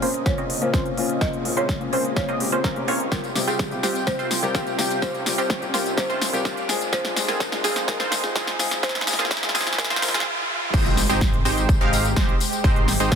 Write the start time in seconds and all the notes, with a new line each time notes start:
Already playing: A#2 C#3 A#3 C4 C#4 F4 D#5, riser
0.02 A#1 A#3 C4 C#4 F4 C5, open hi-hat
0.14 closed hi-hat
0.25 A#2 A#3 C4 C#4 F4 C#5, kick, snare, closed hi-hat
0.38 A#1 A#3 C4 C#4 F4 D#5, closed hi-hat
0.50 open hi-hat
0.61 A#2 A#3 C4 C#4 F4 C5, closed hi-hat
0.74 A#1 A#3 C4 C#4 F4 C5, kick, snare, closed hi-hat
0.86 closed hi-hat
0.97 A#2 A#3 C4 C#4 F4, open hi-hat
1.09 closed hi-hat
1.21 A#1 G#3 A#3 C4 C#4 F4 C5 D#5, kick, snare, closed hi-hat
1.33 closed hi-hat
1.45 A#2 A#3 C4 C#4 F4, open hi-hat
1.57 A#1 A#3 C4 C#4 F4 C5 C#5, closed hi-hat
1.69 kick, snare, closed hi-hat
1.80 A#2 A#3 C4 C#4 F4, closed hi-hat
1.93 A#1 A#3 C4 C#4 F4 C5, open hi-hat
2.05 closed hi-hat
2.16 A#2 A#3 C4 C#4 F4 C#5, kick, snare, closed hi-hat
2.28 A#1 A#3 C4 C#4 F4 D#5, closed hi-hat
2.40 A#2 A#3 C4 C#4 G4, open hi-hat
2.52 A#1 A#3 C4 C#4 F4 C5, closed hi-hat
2.64 A#1 A#3 C4 C#4 F4 A#4, kick, snare, closed hi-hat
2.76 A#2 A#3 C4 C#4 G4, closed hi-hat
2.87 A#1 A#3 C4 C#4 F4 C#5, open hi-hat
3.00 closed hi-hat
3.12 C2 C3 C4 F4 G4 A#4 G5, kick, snare, closed hi-hat, tambourine
3.24 closed hi-hat, tambourine
3.35 C3 G3 C4 F4 G4, snare, open hi-hat, tambourine
3.47 C2 C4 F4 G4 G#4, closed hi-hat, tambourine
3.59 kick, snare, closed hi-hat, tambourine
3.71 C3 G3 C4 F4 G4, closed hi-hat, tambourine
3.83 C2 C4 F4 G4, snare, open hi-hat, tambourine
3.95 closed hi-hat, tambourine
4.07 C3 G3 C4 F4 G4 C5, kick, snare, closed hi-hat, tambourine
4.19 C2 C4 F4 C5, closed hi-hat, tambourine
4.31 snare, open hi-hat, tambourine
4.42 C3 G3 C4 F4 G4 A#4, closed hi-hat, tambourine
4.55 C2 C4 F4 G4, kick, snare, closed hi-hat, tambourine
4.67 closed hi-hat, tambourine
4.78 C3 G3 C4 F4 G4, snare, open hi-hat, tambourine
4.91 closed hi-hat, tambourine
5.02 C2 C4 F4 G4 C5, kick, snare, closed hi-hat, tambourine
5.14 closed hi-hat, tambourine
5.26 C3 G3 C4 F4 G4, snare, open hi-hat, tambourine
5.38 C2 C4 F4 G4 C5, closed hi-hat, tambourine
5.50 kick, snare, closed hi-hat, tambourine
5.61 C3 G3 C4 F4 G4, closed hi-hat, tambourine
5.74 C2 C4 F4 G4 A#4, snare, open hi-hat, tambourine
5.86 closed hi-hat, tambourine
5.97 C3 G3 C4 F4 G4 C5, kick, snare, closed hi-hat, tambourine
6.10 C2 C4 F4 C5, closed hi-hat, tambourine
6.22 snare, open hi-hat, tambourine
6.33 C3 G3 C4 F4 G4 A#4, closed hi-hat, tambourine
6.45 C2 C4 F4 G4, kick, snare, closed hi-hat, tambourine
6.57 closed hi-hat, tambourine
6.68 G#3 C4 F4 G#4, snare, open hi-hat, tambourine
6.81 closed hi-hat, tambourine
6.93 F1 G#3 C4 F4 G#4 C5, kick, snare, closed hi-hat, tambourine
7.05 snare, closed hi-hat, tambourine
7.16 G#3 C4 F4 G#4, snare, open hi-hat, tambourine
7.28 F1 C4 F4 G#4 A#4, snare, closed hi-hat
7.40 kick, snare, closed hi-hat, tambourine
7.52 G#3 C4 F4 G#4, snare, closed hi-hat, tambourine
7.64 F1 C4 F4 G#4, snare, open hi-hat, tambourine
7.76 snare, closed hi-hat, tambourine
7.88 G#3 C4 F4 G#4 A#4, kick, snare, closed hi-hat, tambourine
8.00 F1 C4 F4 C5, snare, closed hi-hat, tambourine
8.12 snare, open hi-hat, tambourine
8.23 G#3 C4 F4 G#4, snare, tambourine
8.36 C4 F4 G#4, kick, snare, closed hi-hat, tambourine
8.47 snare, closed hi-hat, tambourine
8.59 G#3 C4 F4 G#4, snare, open hi-hat, tambourine
8.71 snare, closed hi-hat, tambourine
8.83 F1 A#3 C4 F4 G#4 C5, kick, snare, closed hi-hat, tambourine
8.89 snare
8.95 snare, closed hi-hat, tambourine
9.01 snare
9.06 G#3 C4 F4 G#4, snare, open hi-hat, tambourine
9.13 snare
9.19 C4 F4 G#4 A#4, snare, closed hi-hat
9.25 snare
9.31 kick, snare, closed hi-hat, tambourine
9.37 snare
9.42 G#3 C4 F4 G#4, snare, closed hi-hat, tambourine
9.49 snare
9.55 C4 F4 G#4, snare, open hi-hat, tambourine
9.61 snare
9.67 snare, closed hi-hat, tambourine
9.73 snare
9.78 G#3 C4 F4 G#4 A#4, kick, snare, closed hi-hat, tambourine
9.84 snare
9.90 F1 C4 F4 C5, snare, closed hi-hat, tambourine
9.96 snare
10.02 G#3 C4 F4 A#4, snare, open hi-hat, tambourine
10.08 snare
10.14 C4 F4 G#4, snare, closed hi-hat, tambourine
10.20 snare
10.74 G#1 G#3 C4 D#4 G4 C5, kick, closed hi-hat, crash, tambourine, impact
10.86 closed hi-hat
10.97 snare, open hi-hat, tambourine
11.09 G#1 G#3 C4 D#4 G4 C5, closed hi-hat, tambourine
11.21 kick, snare, closed hi-hat
11.33 closed hi-hat
11.45 G#1 G#3 C4 D#4 G4 C5, open hi-hat, tambourine
11.57 closed hi-hat, tambourine
11.69 kick, closed hi-hat, tambourine
11.81 G#1 G#3 C4 D#4 G4 F5, closed hi-hat
11.93 open hi-hat, tambourine
12.05 closed hi-hat, tambourine
12.16 G#1 G#3 C4 D#4 G4 C5, kick, snare, closed hi-hat
12.29 closed hi-hat
12.40 open hi-hat, tambourine
12.52 closed hi-hat, tambourine
12.64 G#1 G#3 C4 D#4 G4 C5, kick, closed hi-hat, tambourine
12.76 closed hi-hat
12.88 snare, open hi-hat, tambourine
13.00 G#1 G#3 C4 D#4 G4 C5, closed hi-hat, tambourine
13.12 kick, snare, closed hi-hat